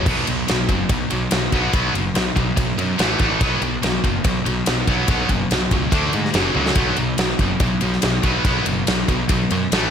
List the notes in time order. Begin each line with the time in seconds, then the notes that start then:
0.06 B1 B2 F#3 B3, kick, crash
0.27 B1 B2 F#3, ride
0.48 B1 B2 F#3, snare, ride
0.69 F#1 B2 F#3, kick, ride
0.89 B1 B2 F#3, kick, ride
1.10 B1 B2 F#3, ride
1.31 B1 B2 F#3, snare, ride
1.52 B1 B2 F#3 B3, kick, ride
1.73 B1 B2 F#3 B3, kick, ride
1.94 F#1 B2 F#3, ride
2.14 B1 B2 F#3, snare, ride
2.36 B1 B2 F#3, kick, ride
2.57 B1 B2 F#3, kick, ride
2.78 F#2 B2 F#3, ride
2.98 A1 A2 E3 A3, snare, ride
3.19 A1 A2 E3 A3, kick, ride
3.41 B1 B2 F#3 B3, kick, ride
3.62 B1 B2 F#3, ride
3.83 B1 B2 F#3, snare, ride
4.04 F#1 B2 F#3, kick, ride
4.24 B1 B2 F#3, kick, ride
4.46 B1 B2 F#3, ride
4.66 B1 B2 F#3, snare, ride
4.87 B1 B2 F#3 B3, kick, ride
5.08 B1 B2 F#3 B3, kick, ride
5.29 F#1 B2 F#3, kick, ride
5.51 B1 B2 F#3, snare, ride
5.71 C#2 B2 F#3, kick, ride
5.92 D2 D3 A3 D4, kick, ride
6.13 G#2 D3 A3, ride
6.25 snare
6.34 F#1 F#2 C#3 F#3, snare, ride
6.55 C#2 F#2 C#3 F#3, high tom
6.66 snare
6.75 B1 B2 F#3 B3, kick, ride
6.96 B1 B2 F#3, ride
7.18 B1 B2 F#3, snare, ride
7.39 F#1 B2 F#3, kick, ride
7.60 B1 B2 F#3, kick, ride
7.81 B1 B2 F#3, ride
7.92 snare
8.02 B1 B2 F#3, snare, ride
8.22 B1 B2 F#3 B3, kick, ride
8.44 B1 B2 F#3 B3, kick, ride
8.66 F#1 B2 F#3, ride
8.87 B1 B2 F#3, snare, ride
9.08 B1 B2 F#3, kick, ride
9.29 B1 B2 F#3, kick, ride
9.51 F#2 B2 F#3, ride
9.72 A1 A2 E3 A3, snare, ride